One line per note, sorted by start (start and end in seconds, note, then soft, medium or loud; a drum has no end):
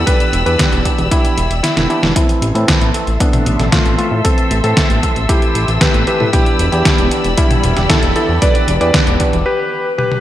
0.00 2.12 G4 medium
0.00 2.12 D5 medium
0.00 2.12 B5 medium
0.00 2.12 E6 medium
0.07 0.43 E3 medium
0.07 0.43 B3 medium
0.07 0.43 D4 medium
0.07 0.43 G4 medium
0.07 0.37 B4 loud
0.07 kick loud
0.07 closed hi-hat medium
0.20 closed hi-hat soft
0.33 0.44 E1 medium
0.33 closed hi-hat medium
0.46 0.57 E2 medium
0.46 0.82 E3 medium
0.46 0.82 B3 medium
0.46 0.82 D4 medium
0.46 0.82 G4 medium
0.46 0.76 B4 medium
0.46 closed hi-hat soft
0.59 kick loud
0.59 snare loud
0.59 closed hi-hat loud
0.72 0.83 E1 medium
0.72 closed hi-hat soft
0.85 1.01 E3 medium
0.85 1.01 B3 medium
0.85 1.01 D4 medium
0.85 1.01 G4 medium
0.85 kick medium
0.85 closed hi-hat medium
0.98 1.09 E1 medium
0.98 closed hi-hat soft
1.11 1.36 E3 medium
1.11 1.36 B3 medium
1.11 1.36 D4 medium
1.11 1.51 E4 medium
1.11 1.36 G4 medium
1.11 kick loud
1.11 closed hi-hat medium
1.25 closed hi-hat soft
1.37 1.48 E1 medium
1.37 closed hi-hat medium
1.51 1.61 E1 medium
1.51 closed hi-hat soft
1.63 1.83 E4 medium
1.63 snare medium
1.63 closed hi-hat loud
1.77 1.87 E1 medium
1.77 1.87 E3 medium
1.77 1.87 B3 medium
1.77 1.87 D4 medium
1.77 1.87 A4 medium
1.77 snare medium
1.77 closed hi-hat soft
1.90 2.13 E3 medium
1.90 2.13 B3 medium
1.90 2.13 D4 medium
1.90 2.10 E4 medium
1.90 2.13 G4 loud
1.90 closed hi-hat soft
2.03 2.13 E1 medium
2.03 snare medium
2.16 2.52 E3 medium
2.16 2.52 A3 medium
2.16 2.46 C4 medium
2.16 2.52 C4 medium
2.16 2.46 E4 loud
2.16 2.52 A4 medium
2.16 6.29 A4 medium
2.16 6.29 E5 medium
2.16 6.29 C6 medium
2.16 9.42 E6 medium
2.16 kick loud
2.16 closed hi-hat loud
2.29 closed hi-hat soft
2.42 2.52 A1 medium
2.42 closed hi-hat medium
2.55 2.66 A2 medium
2.55 2.91 E3 medium
2.55 2.91 A3 medium
2.55 2.91 C4 medium
2.55 2.85 C4 medium
2.55 2.85 E4 medium
2.55 2.91 A4 medium
2.55 closed hi-hat soft
2.68 kick loud
2.68 snare loud
2.68 closed hi-hat loud
2.81 2.92 A1 medium
2.81 closed hi-hat soft
2.94 3.10 E3 medium
2.94 3.10 A3 medium
2.94 3.10 C4 medium
2.94 3.10 A4 medium
2.94 closed hi-hat medium
3.07 3.18 A1 medium
3.07 closed hi-hat soft
3.20 3.45 E3 medium
3.20 3.45 A3 medium
3.20 3.60 B3 medium
3.20 3.45 C4 medium
3.20 3.60 D4 medium
3.20 3.45 A4 loud
3.20 kick loud
3.20 closed hi-hat medium
3.33 closed hi-hat soft
3.33 high tom medium
3.46 3.57 A1 medium
3.46 closed hi-hat medium
3.59 3.70 A1 medium
3.59 3.95 E3 medium
3.59 3.95 A3 medium
3.59 3.95 C4 medium
3.59 3.95 A4 medium
3.59 snare soft
3.59 closed hi-hat soft
3.59 high tom medium
3.72 3.92 A3 medium
3.72 3.92 F4 medium
3.72 kick loud
3.72 snare loud
3.72 closed hi-hat medium
3.86 3.96 A1 medium
3.86 closed hi-hat soft
3.98 4.14 E3 medium
3.98 4.18 A3 medium
3.98 4.14 A3 medium
3.98 4.14 C4 medium
3.98 4.18 F4 medium
3.98 4.14 A4 medium
3.98 closed hi-hat soft
4.12 4.22 A2 medium
4.24 4.61 E3 medium
4.24 4.61 A3 medium
4.24 4.55 C4 medium
4.24 4.61 C4 medium
4.24 4.54 A4 loud
4.24 4.61 A4 medium
4.24 kick loud
4.24 closed hi-hat medium
4.38 closed hi-hat soft
4.51 4.61 A1 medium
4.51 closed hi-hat medium
4.64 4.74 A2 medium
4.64 5.00 E3 medium
4.64 5.00 A3 medium
4.64 4.94 C4 medium
4.64 5.00 C4 medium
4.64 4.94 A4 medium
4.64 5.00 A4 medium
4.64 closed hi-hat soft
4.77 kick loud
4.77 snare loud
4.77 closed hi-hat loud
4.90 5.00 A1 medium
4.90 closed hi-hat soft
5.03 5.19 E3 medium
5.03 5.19 A3 medium
5.03 5.18 C4 medium
5.03 5.19 A4 medium
5.03 kick medium
5.03 closed hi-hat medium
5.16 5.27 A1 medium
5.16 closed hi-hat soft
5.29 5.54 E3 medium
5.29 5.54 A3 medium
5.29 5.54 C4 medium
5.29 5.69 E4 medium
5.29 5.69 G4 loud
5.29 5.54 A4 loud
5.29 kick loud
5.29 closed hi-hat loud
5.42 closed hi-hat soft
5.55 5.66 A1 medium
5.55 closed hi-hat medium
5.68 5.79 A1 medium
5.68 6.04 E3 medium
5.68 6.04 A3 medium
5.68 6.04 C4 medium
5.68 6.04 A4 medium
5.68 closed hi-hat soft
5.81 6.01 G4 medium
5.81 6.01 B4 medium
5.81 kick loud
5.81 snare loud
5.81 closed hi-hat medium
5.94 6.05 A1 medium
5.94 closed hi-hat soft
6.07 6.23 E3 medium
6.07 6.23 A3 medium
6.07 6.23 C4 medium
6.07 6.27 G4 medium
6.07 6.23 A4 medium
6.07 6.27 B4 medium
6.07 closed hi-hat soft
6.20 6.31 A2 medium
6.20 high tom medium
6.33 6.69 E3 medium
6.33 6.69 B3 medium
6.33 6.69 D4 medium
6.33 6.63 E4 medium
6.33 6.63 G4 loud
6.33 6.69 G4 medium
6.33 9.43 G4 medium
6.33 9.43 D5 medium
6.33 9.43 B5 medium
6.33 kick loud
6.33 closed hi-hat medium
6.46 closed hi-hat soft
6.59 6.70 E1 medium
6.59 closed hi-hat medium
6.72 6.83 E2 medium
6.72 7.08 E3 medium
6.72 7.08 B3 medium
6.72 7.08 D4 medium
6.72 7.02 E4 medium
6.72 7.02 G4 medium
6.72 7.08 G4 medium
6.72 closed hi-hat soft
6.85 kick loud
6.85 snare loud
6.85 closed hi-hat loud
6.98 7.09 E1 medium
6.98 closed hi-hat soft
7.11 7.27 E3 medium
7.11 7.27 B3 medium
7.11 7.27 D4 medium
7.11 7.27 G4 medium
7.11 closed hi-hat medium
7.24 7.35 E1 medium
7.24 closed hi-hat soft
7.37 7.63 E3 medium
7.37 7.77 G3 medium
7.37 7.63 B3 medium
7.37 7.63 D4 medium
7.37 7.78 E4 loud
7.37 7.63 G4 loud
7.37 kick loud
7.37 closed hi-hat loud
7.51 closed hi-hat soft
7.51 high tom medium
7.64 7.74 E1 loud
7.64 closed hi-hat medium
7.77 7.87 E1 medium
7.77 8.13 E3 medium
7.77 8.13 B3 medium
7.77 8.13 D4 medium
7.77 8.13 G4 medium
7.77 snare soft
7.77 closed hi-hat soft
7.77 high tom medium
7.90 8.10 E4 medium
7.90 8.10 A4 medium
7.90 kick loud
7.90 snare loud
7.90 closed hi-hat medium
8.03 8.13 E1 medium
8.03 closed hi-hat soft
8.16 8.31 E3 medium
8.16 8.31 B3 medium
8.16 8.31 D4 medium
8.16 8.36 E4 medium
8.16 8.31 G4 medium
8.16 8.36 A4 medium
8.16 closed hi-hat soft
8.29 8.39 E2 medium
8.42 8.78 E3 medium
8.42 8.78 B3 medium
8.42 8.78 D4 medium
8.42 8.78 G4 medium
8.42 8.72 B4 medium
8.42 8.72 D5 loud
8.42 kick loud
8.42 closed hi-hat medium
8.55 closed hi-hat soft
8.68 8.78 E1 medium
8.68 closed hi-hat medium
8.81 8.92 E2 medium
8.81 9.17 E3 medium
8.81 9.17 B3 medium
8.81 9.17 D4 medium
8.81 9.17 G4 medium
8.81 9.11 B4 medium
8.81 9.11 D5 medium
8.81 closed hi-hat soft
8.94 kick loud
8.94 snare loud
8.94 closed hi-hat medium
9.07 9.18 E1 medium
9.07 closed hi-hat soft
9.20 9.36 E3 medium
9.20 9.36 B3 medium
9.20 9.36 D4 medium
9.20 9.36 G4 medium
9.20 kick medium
9.20 closed hi-hat medium
9.33 9.44 E1 medium
9.33 closed hi-hat soft
9.46 9.86 G4 medium
9.46 9.86 B4 loud
9.98 10.18 G4 medium
9.98 10.18 B4 medium
9.98 high tom medium
10.12 high tom medium